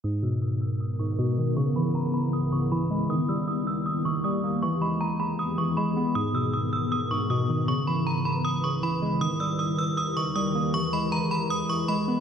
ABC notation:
X:1
M:4/4
L:1/8
Q:1/4=157
K:G#m
V:1 name="Synth bell"
d' e' d' e' d' c' d'2 | c' b a b d' c' b2 | d' e' d' e' d' c' d'2 | c' b a b d' c' b2 |
d' e' d' e' d' c' d'2 | c' b a b d' c' b2 | d' e' d' e' d' c' d'2 | c' b a b d' c' b2 |]
V:2 name="Ambient pad"
B,8- | B,8 | z8 | z8 |
z8 | z8 | z8 | z8 |]
V:3 name="Synth keys" clef=bass
G,, B,,4 G,, B,, D, | C, E,4 C, E, G, | D, =G,4 D, G, A, | E, G,4 E, G, B, |
G,, B,,4 G,, B,, D, | C, E,4 C, E, G, | D, =G,4 D, G, A, | E, G,4 E, G, B, |]